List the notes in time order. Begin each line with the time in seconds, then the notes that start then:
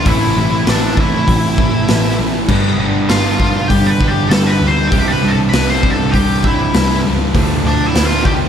0.04 A1 A2 E3 A3 E5, kick, open hi-hat
0.08 C4 E4 A4
0.35 A1 A2 E3 A3
0.67 A1 A2 E3 A3 D4 D5, snare, open hi-hat
0.97 A2 E3 A3 E4 E5, kick
1.26 A1 A2 E3 A3, kick, open hi-hat
1.56 A1 A2 E3 A3, kick
1.87 A1 A2 E3 A3, snare, open hi-hat
2.17 A1 A2 E3 A3
2.48 G1 G2 D3 G3 B3 D4, kick, crash
2.52 G4
2.79 G1 G2 D3 G3
3.09 G1 G2 D3 G3 F4 F5, snare, open hi-hat
3.40 G2 D3 G3, kick
3.68 G1 G2 D3 G3 G4 G5, kick, open hi-hat
3.86 B4 B5
4.01 G1 G2 D3 G3, kick
4.08 G4 G5
4.29 G1 G2 D3 G3 A4 A5, snare, open hi-hat
4.47 B5
4.52 B4
4.61 D2 G2 D3 G3
4.68 C5 C6
4.88 C2 G5
4.92 C2 G2 C3 G3 D4 G4, kick, open hi-hat
5.08 B5
5.12 B4
5.22 C2 G2 C3
5.28 A5
5.32 A4
5.49 C2 B5
5.53 G2 C3 B4, snare, open hi-hat
5.70 C6
5.74 C5
5.83 C2 G2 C3, kick
5.91 A4 A5
6.11 C2 G2 C3 G4 G5, kick, open hi-hat
6.43 C2 G2 C3 E5, kick
6.47 E4
6.73 C2 G2 C3, snare, open hi-hat
7.03 C2 C#2 G2 C3
7.33 D2 A2 D3 F3 A3, kick, open hi-hat
7.38 D4
7.63 D2 A2 D3 D5
7.68 D4
7.86 E4 E5
7.94 D2 A2 D3, snare, open hi-hat
8.05 F4 F5
8.25 D2 A2 D3 G4 G5, kick